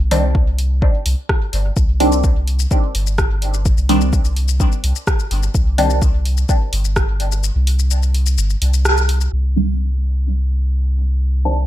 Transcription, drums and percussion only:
0.11 open hi-hat
0.35 kick
0.59 open hi-hat
0.82 kick
1.06 open hi-hat
1.29 kick, cross-stick
1.53 open hi-hat
1.77 kick, shaker
2.00 open hi-hat
2.12 shaker
2.24 kick, shaker
2.48 open hi-hat
2.59 shaker
2.71 kick, shaker
2.95 open hi-hat
3.07 shaker
3.18 kick, cross-stick, shaker
3.42 open hi-hat
3.54 shaker
3.66 kick, shaker
3.78 shaker
3.89 open hi-hat
4.01 shaker
4.13 kick, shaker
4.25 shaker
4.36 open hi-hat
4.48 shaker
4.60 kick, shaker
4.72 shaker
4.84 open hi-hat
4.96 shaker
5.07 kick, cross-stick, shaker
5.19 shaker
5.31 open hi-hat
5.43 shaker
5.55 kick, shaker
5.78 open hi-hat
5.90 shaker
6.02 kick, shaker
6.25 open hi-hat
6.37 shaker
6.49 kick, shaker
6.73 open hi-hat
6.85 shaker
6.96 kick, cross-stick, shaker
7.20 open hi-hat
7.32 shaker
7.44 shaker
7.67 open hi-hat
7.79 shaker
7.91 shaker
8.03 shaker
8.14 open hi-hat
8.26 shaker
8.38 shaker
8.50 shaker
8.62 open hi-hat
8.74 open hi-hat, shaker
8.85 cross-stick, shaker
8.97 shaker
9.09 open hi-hat
9.21 shaker
9.56 open hi-hat
10.04 open hi-hat
10.51 open hi-hat
10.98 open hi-hat
11.45 open hi-hat

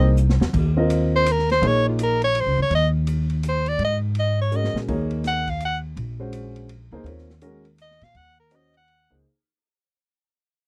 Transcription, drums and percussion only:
0.17 hi-hat pedal
0.29 snare
0.41 snare
0.54 kick, crash
0.90 hi-hat pedal, ride
1.26 hi-hat pedal, ride
1.39 snare
1.50 snare, ride
1.63 ride
1.99 hi-hat pedal, ride
2.22 ride
2.35 ride
2.71 ride
3.07 hi-hat pedal, ride
3.30 ride
3.43 hi-hat pedal, ride
3.66 ride
3.79 ride
4.15 ride
4.51 hi-hat pedal
4.64 snare
4.76 snare
4.88 kick, crash
5.11 ride
5.24 snare, hi-hat pedal, ride
5.47 kick, ride
5.60 hi-hat pedal, ride
5.97 ride
6.33 hi-hat pedal, ride
6.56 ride
6.69 ride
7.06 ride
7.18 snare
7.30 snare
7.41 hi-hat pedal, ride
7.65 ride
7.78 hi-hat pedal, ride
7.91 snare
8.01 snare, ride
8.15 ride
8.51 hi-hat pedal, ride
8.74 ride
8.88 ride

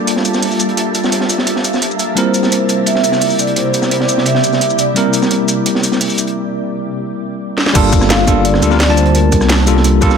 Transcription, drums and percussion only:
0.07 closed hi-hat
0.16 snare
0.25 closed hi-hat, shaker
0.34 snare, shaker
0.42 closed hi-hat, open hi-hat
0.51 shaker
0.59 closed hi-hat, shaker
0.69 closed hi-hat
0.77 closed hi-hat
0.95 closed hi-hat, shaker
1.04 snare, shaker
1.12 closed hi-hat
1.20 snare
1.30 closed hi-hat, shaker
1.38 snare
1.47 closed hi-hat
1.56 snare
1.64 closed hi-hat, shaker
1.73 snare, shaker
1.82 closed hi-hat
1.91 shaker
1.99 closed hi-hat, shaker
2.17 closed hi-hat
2.34 closed hi-hat, shaker
2.43 snare, shaker
2.52 closed hi-hat
2.69 closed hi-hat, shaker
2.86 closed hi-hat
2.95 snare
3.04 closed hi-hat, shaker
3.12 snare, shaker
3.21 closed hi-hat, open hi-hat
3.30 shaker
3.39 closed hi-hat, shaker
3.47 closed hi-hat
3.56 closed hi-hat
3.74 closed hi-hat, shaker
3.82 snare, shaker
3.91 closed hi-hat
4.00 snare
4.08 closed hi-hat, shaker
4.18 snare
4.26 closed hi-hat
4.35 snare
4.44 closed hi-hat, shaker
4.53 snare, shaker
4.61 closed hi-hat
4.70 shaker
4.79 closed hi-hat, shaker
4.96 closed hi-hat
5.14 closed hi-hat, shaker
5.22 snare, shaker
5.31 closed hi-hat
5.48 closed hi-hat, shaker
5.66 closed hi-hat
5.75 snare
5.83 closed hi-hat, shaker
5.92 snare, shaker
6.01 closed hi-hat, open hi-hat
6.10 shaker
6.18 closed hi-hat, shaker
6.27 closed hi-hat
7.58 snare
7.66 snare
7.75 kick, closed hi-hat, crash
7.93 kick, closed hi-hat, shaker
8.01 cross-stick, snare, shaker
8.10 snare, closed hi-hat
8.27 kick, closed hi-hat, shaker
8.45 closed hi-hat
8.54 cross-stick, snare
8.62 closed hi-hat, shaker
8.71 snare, shaker
8.80 snare, closed hi-hat, open hi-hat
8.97 closed hi-hat, shaker
9.06 closed hi-hat
9.15 closed hi-hat
9.32 kick, closed hi-hat, shaker
9.41 cross-stick, snare, shaker
9.49 snare, closed hi-hat
9.58 snare
9.67 closed hi-hat, shaker
9.77 snare
9.84 closed hi-hat
10.02 kick, closed hi-hat, shaker
10.11 snare, shaker

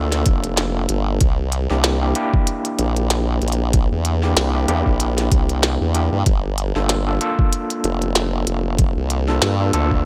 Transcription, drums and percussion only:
0.12 snare, closed hi-hat
0.26 kick, closed hi-hat
0.44 closed hi-hat
0.57 snare, closed hi-hat
0.89 closed hi-hat
1.21 kick, closed hi-hat
1.52 closed hi-hat
1.70 snare
1.84 snare, closed hi-hat
2.15 closed hi-hat
2.34 kick
2.47 closed hi-hat
2.65 closed hi-hat
2.79 closed hi-hat
2.96 closed hi-hat
3.10 snare, closed hi-hat
3.42 closed hi-hat
3.48 closed hi-hat
3.52 closed hi-hat
3.73 kick, closed hi-hat
4.05 closed hi-hat
4.23 snare
4.37 snare, closed hi-hat
4.68 closed hi-hat
4.86 kick
5.00 closed hi-hat
5.18 snare, closed hi-hat
5.32 kick, closed hi-hat
5.49 closed hi-hat
5.63 snare, closed hi-hat
5.95 closed hi-hat
6.26 kick, closed hi-hat
6.58 closed hi-hat
6.76 snare
6.89 snare, closed hi-hat
7.21 closed hi-hat
7.39 kick
7.53 closed hi-hat
7.70 closed hi-hat
7.84 closed hi-hat
8.02 closed hi-hat
8.15 snare, closed hi-hat
8.47 closed hi-hat
8.79 kick, closed hi-hat
9.10 closed hi-hat
9.28 snare
9.42 snare, closed hi-hat
9.73 closed hi-hat
9.91 kick

